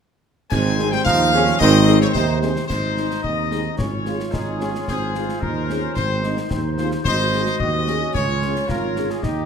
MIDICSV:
0, 0, Header, 1, 8, 480
1, 0, Start_track
1, 0, Key_signature, -4, "major"
1, 0, Tempo, 545455
1, 451, Time_signature, 2, 2, 24, 8
1, 8320, End_track
2, 0, Start_track
2, 0, Title_t, "Trumpet section"
2, 0, Program_c, 0, 61
2, 449, Note_on_c, 0, 80, 112
2, 784, Note_off_c, 0, 80, 0
2, 809, Note_on_c, 0, 79, 113
2, 924, Note_on_c, 0, 77, 127
2, 929, Note_off_c, 0, 79, 0
2, 1373, Note_off_c, 0, 77, 0
2, 1402, Note_on_c, 0, 75, 127
2, 1740, Note_off_c, 0, 75, 0
2, 1774, Note_on_c, 0, 73, 110
2, 1827, Note_off_c, 0, 73, 0
2, 1878, Note_on_c, 0, 72, 102
2, 2106, Note_off_c, 0, 72, 0
2, 2122, Note_on_c, 0, 72, 83
2, 2348, Note_off_c, 0, 72, 0
2, 2360, Note_on_c, 0, 72, 94
2, 2811, Note_off_c, 0, 72, 0
2, 2845, Note_on_c, 0, 75, 90
2, 3293, Note_off_c, 0, 75, 0
2, 3329, Note_on_c, 0, 73, 91
2, 3801, Note_on_c, 0, 68, 77
2, 3809, Note_off_c, 0, 73, 0
2, 4279, Note_off_c, 0, 68, 0
2, 4290, Note_on_c, 0, 68, 96
2, 4736, Note_off_c, 0, 68, 0
2, 4764, Note_on_c, 0, 70, 90
2, 5242, Note_on_c, 0, 72, 100
2, 5247, Note_off_c, 0, 70, 0
2, 5692, Note_off_c, 0, 72, 0
2, 5970, Note_on_c, 0, 72, 87
2, 6078, Note_off_c, 0, 72, 0
2, 6199, Note_on_c, 0, 72, 113
2, 6650, Note_off_c, 0, 72, 0
2, 6681, Note_on_c, 0, 75, 110
2, 7165, Note_off_c, 0, 75, 0
2, 7170, Note_on_c, 0, 73, 103
2, 7616, Note_off_c, 0, 73, 0
2, 7643, Note_on_c, 0, 70, 88
2, 8006, Note_off_c, 0, 70, 0
2, 8009, Note_on_c, 0, 68, 67
2, 8122, Note_on_c, 0, 67, 95
2, 8129, Note_off_c, 0, 68, 0
2, 8320, Note_off_c, 0, 67, 0
2, 8320, End_track
3, 0, Start_track
3, 0, Title_t, "Woodwind section"
3, 0, Program_c, 1, 71
3, 451, Note_on_c, 1, 63, 75
3, 452, Note_on_c, 1, 72, 79
3, 1375, Note_off_c, 1, 63, 0
3, 1375, Note_off_c, 1, 72, 0
3, 1418, Note_on_c, 1, 63, 93
3, 1420, Note_on_c, 1, 72, 92
3, 1860, Note_off_c, 1, 63, 0
3, 1861, Note_off_c, 1, 72, 0
3, 1892, Note_on_c, 1, 72, 71
3, 1900, Note_on_c, 1, 63, 77
3, 1999, Note_off_c, 1, 72, 0
3, 2118, Note_off_c, 1, 63, 0
3, 2384, Note_on_c, 1, 75, 48
3, 2387, Note_on_c, 1, 63, 59
3, 3301, Note_off_c, 1, 75, 0
3, 3303, Note_off_c, 1, 63, 0
3, 3335, Note_on_c, 1, 65, 66
3, 3340, Note_on_c, 1, 73, 57
3, 4294, Note_off_c, 1, 73, 0
3, 4301, Note_on_c, 1, 72, 70
3, 5252, Note_off_c, 1, 65, 0
3, 5268, Note_on_c, 1, 63, 58
3, 6215, Note_off_c, 1, 72, 0
3, 6215, Note_on_c, 1, 66, 64
3, 6217, Note_on_c, 1, 75, 71
3, 6218, Note_off_c, 1, 63, 0
3, 7138, Note_off_c, 1, 75, 0
3, 7172, Note_off_c, 1, 66, 0
3, 7173, Note_on_c, 1, 65, 66
3, 7175, Note_on_c, 1, 73, 66
3, 8096, Note_off_c, 1, 65, 0
3, 8115, Note_on_c, 1, 75, 56
3, 8117, Note_on_c, 1, 63, 51
3, 8132, Note_off_c, 1, 73, 0
3, 8320, Note_off_c, 1, 63, 0
3, 8320, Note_off_c, 1, 75, 0
3, 8320, End_track
4, 0, Start_track
4, 0, Title_t, "French horn section"
4, 0, Program_c, 2, 60
4, 684, Note_on_c, 2, 68, 63
4, 685, Note_on_c, 2, 60, 60
4, 686, Note_on_c, 2, 63, 69
4, 772, Note_off_c, 2, 60, 0
4, 772, Note_off_c, 2, 68, 0
4, 773, Note_off_c, 2, 63, 0
4, 1170, Note_on_c, 2, 60, 76
4, 1170, Note_on_c, 2, 63, 69
4, 1172, Note_on_c, 2, 68, 72
4, 1257, Note_off_c, 2, 60, 0
4, 1257, Note_off_c, 2, 63, 0
4, 1258, Note_off_c, 2, 68, 0
4, 1654, Note_on_c, 2, 60, 79
4, 1655, Note_on_c, 2, 68, 82
4, 1656, Note_on_c, 2, 63, 81
4, 1739, Note_off_c, 2, 60, 0
4, 1740, Note_off_c, 2, 63, 0
4, 1740, Note_off_c, 2, 68, 0
4, 2135, Note_on_c, 2, 60, 70
4, 2135, Note_on_c, 2, 63, 67
4, 2138, Note_on_c, 2, 68, 73
4, 2220, Note_off_c, 2, 60, 0
4, 2220, Note_off_c, 2, 63, 0
4, 2222, Note_off_c, 2, 68, 0
4, 2616, Note_on_c, 2, 56, 46
4, 2616, Note_on_c, 2, 63, 49
4, 2616, Note_on_c, 2, 68, 48
4, 2701, Note_off_c, 2, 56, 0
4, 2701, Note_off_c, 2, 63, 0
4, 2701, Note_off_c, 2, 68, 0
4, 3091, Note_on_c, 2, 56, 44
4, 3091, Note_on_c, 2, 68, 49
4, 3092, Note_on_c, 2, 63, 47
4, 3177, Note_off_c, 2, 56, 0
4, 3177, Note_off_c, 2, 68, 0
4, 3178, Note_off_c, 2, 63, 0
4, 3570, Note_on_c, 2, 56, 51
4, 3572, Note_on_c, 2, 68, 49
4, 3573, Note_on_c, 2, 65, 53
4, 3656, Note_off_c, 2, 56, 0
4, 3657, Note_off_c, 2, 68, 0
4, 3658, Note_off_c, 2, 65, 0
4, 4051, Note_on_c, 2, 68, 50
4, 4052, Note_on_c, 2, 56, 56
4, 4055, Note_on_c, 2, 65, 48
4, 4137, Note_off_c, 2, 56, 0
4, 4137, Note_off_c, 2, 68, 0
4, 4140, Note_off_c, 2, 65, 0
4, 4534, Note_on_c, 2, 63, 52
4, 4534, Note_on_c, 2, 68, 49
4, 4536, Note_on_c, 2, 60, 49
4, 4619, Note_off_c, 2, 63, 0
4, 4620, Note_off_c, 2, 68, 0
4, 4621, Note_off_c, 2, 60, 0
4, 5017, Note_on_c, 2, 60, 51
4, 5018, Note_on_c, 2, 68, 57
4, 5019, Note_on_c, 2, 63, 52
4, 5102, Note_off_c, 2, 60, 0
4, 5102, Note_off_c, 2, 68, 0
4, 5103, Note_off_c, 2, 63, 0
4, 5504, Note_on_c, 2, 63, 51
4, 5505, Note_on_c, 2, 60, 55
4, 5507, Note_on_c, 2, 68, 50
4, 5587, Note_off_c, 2, 63, 0
4, 5588, Note_off_c, 2, 60, 0
4, 5589, Note_off_c, 2, 68, 0
4, 5979, Note_on_c, 2, 63, 54
4, 5979, Note_on_c, 2, 68, 64
4, 5980, Note_on_c, 2, 60, 57
4, 6063, Note_off_c, 2, 63, 0
4, 6063, Note_off_c, 2, 68, 0
4, 6064, Note_off_c, 2, 60, 0
4, 6457, Note_on_c, 2, 68, 58
4, 6458, Note_on_c, 2, 63, 58
4, 6458, Note_on_c, 2, 66, 61
4, 6541, Note_off_c, 2, 68, 0
4, 6543, Note_off_c, 2, 63, 0
4, 6543, Note_off_c, 2, 66, 0
4, 6932, Note_on_c, 2, 68, 51
4, 6934, Note_on_c, 2, 63, 53
4, 6937, Note_on_c, 2, 66, 55
4, 7018, Note_off_c, 2, 68, 0
4, 7019, Note_off_c, 2, 63, 0
4, 7021, Note_off_c, 2, 66, 0
4, 7421, Note_on_c, 2, 61, 55
4, 7423, Note_on_c, 2, 68, 57
4, 7425, Note_on_c, 2, 65, 52
4, 7505, Note_off_c, 2, 61, 0
4, 7506, Note_off_c, 2, 68, 0
4, 7507, Note_off_c, 2, 65, 0
4, 7893, Note_on_c, 2, 61, 53
4, 7896, Note_on_c, 2, 65, 50
4, 7898, Note_on_c, 2, 68, 50
4, 7979, Note_off_c, 2, 61, 0
4, 7981, Note_off_c, 2, 65, 0
4, 7982, Note_off_c, 2, 68, 0
4, 8320, End_track
5, 0, Start_track
5, 0, Title_t, "Trombone section"
5, 0, Program_c, 3, 61
5, 457, Note_on_c, 3, 60, 82
5, 900, Note_off_c, 3, 60, 0
5, 933, Note_on_c, 3, 63, 94
5, 1154, Note_off_c, 3, 63, 0
5, 1176, Note_on_c, 3, 61, 97
5, 1396, Note_off_c, 3, 61, 0
5, 1418, Note_on_c, 3, 60, 104
5, 1860, Note_off_c, 3, 60, 0
5, 1887, Note_on_c, 3, 63, 91
5, 2111, Note_off_c, 3, 63, 0
5, 2850, Note_on_c, 3, 60, 64
5, 3296, Note_off_c, 3, 60, 0
5, 3332, Note_on_c, 3, 61, 62
5, 3440, Note_off_c, 3, 61, 0
5, 3580, Note_on_c, 3, 65, 60
5, 3798, Note_off_c, 3, 65, 0
5, 3801, Note_on_c, 3, 63, 70
5, 4028, Note_off_c, 3, 63, 0
5, 4053, Note_on_c, 3, 61, 66
5, 4274, Note_off_c, 3, 61, 0
5, 4301, Note_on_c, 3, 60, 61
5, 4406, Note_off_c, 3, 60, 0
5, 4517, Note_on_c, 3, 65, 60
5, 4746, Note_off_c, 3, 65, 0
5, 4763, Note_on_c, 3, 63, 59
5, 4999, Note_on_c, 3, 61, 68
5, 5006, Note_off_c, 3, 63, 0
5, 5244, Note_off_c, 3, 61, 0
5, 5246, Note_on_c, 3, 60, 67
5, 5478, Note_on_c, 3, 63, 62
5, 5488, Note_off_c, 3, 60, 0
5, 5706, Note_off_c, 3, 63, 0
5, 5723, Note_on_c, 3, 60, 71
5, 5832, Note_off_c, 3, 60, 0
5, 5975, Note_on_c, 3, 65, 73
5, 6082, Note_off_c, 3, 65, 0
5, 6210, Note_on_c, 3, 63, 61
5, 6656, Note_off_c, 3, 63, 0
5, 6697, Note_on_c, 3, 60, 64
5, 6917, Note_off_c, 3, 60, 0
5, 6922, Note_on_c, 3, 61, 69
5, 7610, Note_off_c, 3, 61, 0
5, 7641, Note_on_c, 3, 65, 73
5, 8091, Note_off_c, 3, 65, 0
5, 8119, Note_on_c, 3, 63, 74
5, 8320, Note_off_c, 3, 63, 0
5, 8320, End_track
6, 0, Start_track
6, 0, Title_t, "Euphonium"
6, 0, Program_c, 4, 58
6, 453, Note_on_c, 4, 56, 95
6, 812, Note_on_c, 4, 55, 77
6, 825, Note_off_c, 4, 56, 0
6, 923, Note_off_c, 4, 55, 0
6, 928, Note_on_c, 4, 53, 104
6, 1375, Note_off_c, 4, 53, 0
6, 1413, Note_on_c, 4, 51, 119
6, 1746, Note_off_c, 4, 51, 0
6, 1772, Note_on_c, 4, 49, 86
6, 1825, Note_off_c, 4, 49, 0
6, 1889, Note_on_c, 4, 48, 96
6, 2335, Note_off_c, 4, 48, 0
6, 8320, End_track
7, 0, Start_track
7, 0, Title_t, "Tuba"
7, 0, Program_c, 5, 58
7, 453, Note_on_c, 5, 32, 88
7, 851, Note_off_c, 5, 32, 0
7, 938, Note_on_c, 5, 39, 89
7, 1334, Note_off_c, 5, 39, 0
7, 1413, Note_on_c, 5, 32, 122
7, 1811, Note_off_c, 5, 32, 0
7, 1886, Note_on_c, 5, 39, 96
7, 2287, Note_off_c, 5, 39, 0
7, 2367, Note_on_c, 5, 32, 68
7, 2768, Note_off_c, 5, 32, 0
7, 2848, Note_on_c, 5, 39, 60
7, 3248, Note_off_c, 5, 39, 0
7, 3326, Note_on_c, 5, 32, 69
7, 3727, Note_off_c, 5, 32, 0
7, 3807, Note_on_c, 5, 32, 61
7, 4208, Note_off_c, 5, 32, 0
7, 4287, Note_on_c, 5, 32, 69
7, 4688, Note_off_c, 5, 32, 0
7, 4772, Note_on_c, 5, 39, 65
7, 5170, Note_off_c, 5, 39, 0
7, 5247, Note_on_c, 5, 32, 80
7, 5613, Note_off_c, 5, 32, 0
7, 5733, Note_on_c, 5, 39, 76
7, 6131, Note_off_c, 5, 39, 0
7, 6211, Note_on_c, 5, 32, 83
7, 6609, Note_off_c, 5, 32, 0
7, 6686, Note_on_c, 5, 39, 74
7, 7087, Note_off_c, 5, 39, 0
7, 7162, Note_on_c, 5, 37, 78
7, 7565, Note_off_c, 5, 37, 0
7, 7646, Note_on_c, 5, 32, 63
7, 8047, Note_off_c, 5, 32, 0
7, 8125, Note_on_c, 5, 39, 64
7, 8320, Note_off_c, 5, 39, 0
7, 8320, End_track
8, 0, Start_track
8, 0, Title_t, "Drums"
8, 454, Note_on_c, 9, 35, 80
8, 454, Note_on_c, 9, 38, 74
8, 454, Note_on_c, 9, 49, 56
8, 542, Note_off_c, 9, 35, 0
8, 542, Note_off_c, 9, 38, 0
8, 542, Note_off_c, 9, 49, 0
8, 697, Note_on_c, 9, 38, 56
8, 785, Note_off_c, 9, 38, 0
8, 813, Note_on_c, 9, 38, 62
8, 901, Note_off_c, 9, 38, 0
8, 933, Note_on_c, 9, 35, 78
8, 933, Note_on_c, 9, 38, 76
8, 1021, Note_off_c, 9, 35, 0
8, 1021, Note_off_c, 9, 38, 0
8, 1294, Note_on_c, 9, 38, 64
8, 1382, Note_off_c, 9, 38, 0
8, 1414, Note_on_c, 9, 35, 87
8, 1414, Note_on_c, 9, 38, 70
8, 1502, Note_off_c, 9, 35, 0
8, 1502, Note_off_c, 9, 38, 0
8, 1651, Note_on_c, 9, 38, 57
8, 1739, Note_off_c, 9, 38, 0
8, 1768, Note_on_c, 9, 38, 66
8, 1856, Note_off_c, 9, 38, 0
8, 1890, Note_on_c, 9, 35, 76
8, 1890, Note_on_c, 9, 38, 72
8, 1978, Note_off_c, 9, 35, 0
8, 1978, Note_off_c, 9, 38, 0
8, 2132, Note_on_c, 9, 38, 62
8, 2220, Note_off_c, 9, 38, 0
8, 2255, Note_on_c, 9, 38, 63
8, 2343, Note_off_c, 9, 38, 0
8, 2373, Note_on_c, 9, 35, 69
8, 2373, Note_on_c, 9, 38, 59
8, 2373, Note_on_c, 9, 49, 41
8, 2461, Note_off_c, 9, 35, 0
8, 2461, Note_off_c, 9, 38, 0
8, 2461, Note_off_c, 9, 49, 0
8, 2615, Note_on_c, 9, 38, 51
8, 2703, Note_off_c, 9, 38, 0
8, 2735, Note_on_c, 9, 38, 56
8, 2823, Note_off_c, 9, 38, 0
8, 2851, Note_on_c, 9, 35, 62
8, 2939, Note_off_c, 9, 35, 0
8, 3093, Note_on_c, 9, 38, 55
8, 3181, Note_off_c, 9, 38, 0
8, 3331, Note_on_c, 9, 35, 75
8, 3331, Note_on_c, 9, 38, 60
8, 3419, Note_off_c, 9, 35, 0
8, 3419, Note_off_c, 9, 38, 0
8, 3571, Note_on_c, 9, 38, 45
8, 3659, Note_off_c, 9, 38, 0
8, 3695, Note_on_c, 9, 38, 55
8, 3783, Note_off_c, 9, 38, 0
8, 3815, Note_on_c, 9, 35, 63
8, 3815, Note_on_c, 9, 38, 68
8, 3903, Note_off_c, 9, 35, 0
8, 3903, Note_off_c, 9, 38, 0
8, 4052, Note_on_c, 9, 38, 55
8, 4140, Note_off_c, 9, 38, 0
8, 4179, Note_on_c, 9, 38, 51
8, 4267, Note_off_c, 9, 38, 0
8, 4294, Note_on_c, 9, 35, 59
8, 4294, Note_on_c, 9, 38, 63
8, 4382, Note_off_c, 9, 35, 0
8, 4382, Note_off_c, 9, 38, 0
8, 4530, Note_on_c, 9, 38, 47
8, 4618, Note_off_c, 9, 38, 0
8, 4654, Note_on_c, 9, 38, 53
8, 4742, Note_off_c, 9, 38, 0
8, 4773, Note_on_c, 9, 35, 67
8, 4861, Note_off_c, 9, 35, 0
8, 5015, Note_on_c, 9, 38, 59
8, 5103, Note_off_c, 9, 38, 0
8, 5248, Note_on_c, 9, 35, 66
8, 5248, Note_on_c, 9, 38, 61
8, 5336, Note_off_c, 9, 35, 0
8, 5336, Note_off_c, 9, 38, 0
8, 5486, Note_on_c, 9, 38, 52
8, 5574, Note_off_c, 9, 38, 0
8, 5607, Note_on_c, 9, 38, 62
8, 5695, Note_off_c, 9, 38, 0
8, 5725, Note_on_c, 9, 35, 67
8, 5725, Note_on_c, 9, 38, 72
8, 5813, Note_off_c, 9, 35, 0
8, 5813, Note_off_c, 9, 38, 0
8, 5964, Note_on_c, 9, 38, 53
8, 6052, Note_off_c, 9, 38, 0
8, 6084, Note_on_c, 9, 38, 55
8, 6172, Note_off_c, 9, 38, 0
8, 6205, Note_on_c, 9, 35, 77
8, 6205, Note_on_c, 9, 38, 65
8, 6205, Note_on_c, 9, 49, 26
8, 6293, Note_off_c, 9, 35, 0
8, 6293, Note_off_c, 9, 38, 0
8, 6293, Note_off_c, 9, 49, 0
8, 6445, Note_on_c, 9, 38, 46
8, 6533, Note_off_c, 9, 38, 0
8, 6567, Note_on_c, 9, 38, 60
8, 6655, Note_off_c, 9, 38, 0
8, 6686, Note_on_c, 9, 35, 71
8, 6774, Note_off_c, 9, 35, 0
8, 6927, Note_on_c, 9, 38, 56
8, 7015, Note_off_c, 9, 38, 0
8, 7170, Note_on_c, 9, 35, 72
8, 7170, Note_on_c, 9, 38, 60
8, 7258, Note_off_c, 9, 35, 0
8, 7258, Note_off_c, 9, 38, 0
8, 7410, Note_on_c, 9, 38, 47
8, 7498, Note_off_c, 9, 38, 0
8, 7531, Note_on_c, 9, 38, 62
8, 7619, Note_off_c, 9, 38, 0
8, 7648, Note_on_c, 9, 35, 68
8, 7648, Note_on_c, 9, 38, 63
8, 7736, Note_off_c, 9, 35, 0
8, 7736, Note_off_c, 9, 38, 0
8, 7886, Note_on_c, 9, 38, 55
8, 7974, Note_off_c, 9, 38, 0
8, 8008, Note_on_c, 9, 38, 49
8, 8096, Note_off_c, 9, 38, 0
8, 8123, Note_on_c, 9, 35, 69
8, 8123, Note_on_c, 9, 38, 58
8, 8211, Note_off_c, 9, 35, 0
8, 8211, Note_off_c, 9, 38, 0
8, 8320, End_track
0, 0, End_of_file